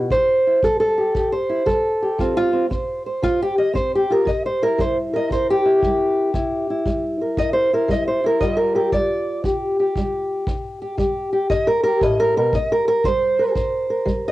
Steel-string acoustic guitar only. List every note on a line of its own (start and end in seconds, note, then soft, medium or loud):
0.00 0.11 B2 medium
0.11 0.59 C3 medium
0.11 0.63 C5 loud
0.47 0.63 E4 soft
0.64 1.12 G3 medium
0.64 0.79 A4 medium
0.80 1.32 A4 medium
0.98 1.15 G4 soft
1.15 1.63 G2 medium
1.15 1.32 G4 soft
1.32 1.67 C5 medium
1.49 1.66 E4 soft
1.66 2.14 G3 medium
1.66 2.35 A4 medium
2.02 2.19 G4 soft
2.18 2.67 F3 medium
2.18 2.52 C4 medium
2.18 2.36 F4 soft
2.37 2.65 F4 loud
2.53 2.70 C4 soft
2.70 3.18 C4 medium
2.70 3.06 C5 soft
3.06 3.42 C5 soft
3.22 3.71 C3 medium
3.22 3.40 F4 loud
3.42 3.58 G4 medium
3.58 3.75 D#5 medium
3.73 4.22 C4 medium
3.73 3.92 C5 medium
3.95 4.11 G4 medium
4.10 4.25 F4 soft
4.10 4.28 A#4 medium
4.25 4.74 C3 medium
4.25 4.44 D#5 medium
4.46 4.62 C5 medium
4.62 5.64 E4 soft
4.62 4.79 A#4 medium
4.78 5.26 G3 medium
4.78 4.96 C5 medium
5.13 6.32 A#4 soft
5.13 5.31 D#5 medium
5.30 5.78 G2 medium
5.30 5.48 C5 loud
5.50 7.04 G4 loud
5.66 6.32 E4 soft
5.85 6.31 G3 medium
6.34 6.82 C3 medium
6.34 6.68 E4 medium
6.70 7.72 E4 soft
6.86 7.34 G3 medium
7.22 7.72 A#4 soft
7.38 7.86 G2 medium
7.38 7.53 D#5 loud
7.53 7.71 C5 medium
7.73 8.23 E4 soft
7.73 7.90 A#4 medium
7.88 8.36 G3 medium
7.88 8.07 D#5 medium
8.08 8.24 C5 medium
8.24 8.39 E4 soft
8.24 8.42 A#4 medium
8.41 8.89 G2 medium
8.41 8.93 G3 medium
8.41 10.45 F4 soft
8.41 8.57 D#5 medium
8.57 8.74 A#4 medium
8.75 8.92 G4 medium
8.75 8.92 A#4 medium
8.93 9.40 G3 medium
8.93 9.44 D5 medium
9.44 9.91 G2 medium
9.44 9.79 G4 soft
9.79 10.81 G4 soft
9.97 10.44 G3 medium
10.48 10.95 G2 medium
10.82 10.98 G4 medium
10.98 11.45 G3 medium
10.98 11.32 G4 soft
11.33 11.49 G4 medium
11.50 11.98 G2 medium
11.50 11.67 D#5 loud
11.67 11.82 A#4 loud
11.84 12.02 G4 medium
11.84 12.01 A#4 medium
12.02 12.35 A2 medium
12.02 12.19 D#5 medium
12.20 12.36 A#4 loud
12.37 12.53 B2 medium
12.37 12.53 A#4 medium
12.55 13.01 C3 medium
12.55 12.70 D#5 medium
12.72 12.87 A#4 medium
12.88 13.04 A#4 loud
13.05 13.52 G3 medium
13.05 13.54 C5 loud
13.39 13.89 A#4 medium
13.55 14.03 G2 medium
13.55 14.23 C5 medium
13.90 14.32 A#4 medium
14.05 14.32 G3 medium
14.28 14.32 D#5 loud